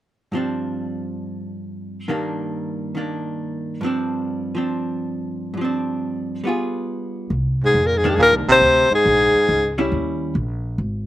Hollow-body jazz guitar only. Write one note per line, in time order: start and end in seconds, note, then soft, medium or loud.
0.32 2.07 G2 soft
0.32 2.08 F3 soft
0.32 2.09 C4 soft
0.37 2.09 D4 soft
2.08 3.80 G2 soft
2.08 2.94 D#3 soft
2.08 2.96 A#3 soft
2.08 2.96 D4 soft
2.95 3.82 D#3 soft
2.95 3.83 A#3 soft
2.95 3.84 D4 soft
3.81 5.52 G2 soft
3.81 4.53 F3 soft
3.81 4.55 C4 soft
3.86 4.57 D4 soft
4.55 5.56 F3 soft
4.55 5.57 C4 soft
4.55 5.58 D4 soft
5.54 6.42 G2 soft
5.54 6.43 F3 soft
5.61 6.45 C4 soft
5.61 6.47 D4 soft
6.44 7.31 G3 soft
6.44 7.32 B3 soft
6.44 7.33 F4 soft
6.49 7.33 G#4 soft
8.04 8.59 D#3 medium
8.04 8.59 A#3 medium
8.04 8.60 D4 medium
9.78 10.33 G3 soft
9.78 10.33 C#4 medium
9.78 10.33 E4 medium